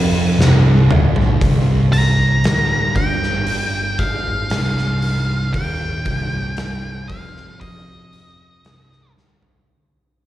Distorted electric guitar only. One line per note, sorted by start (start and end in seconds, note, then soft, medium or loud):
0.00 0.37 F2 loud
0.39 0.89 C2 loud
0.90 1.40 D2 loud
1.41 2.43 C2 loud
2.45 2.95 D2 loud
2.97 3.98 G2 loud
4.00 4.50 G#2 loud
4.52 5.53 C2 loud
5.55 6.05 D#2 loud
6.06 7.08 C2 loud
7.10 7.60 F2 loud
7.62 8.63 F2 loud
8.64 9.15 C2 loud
9.17 9.67 D2 loud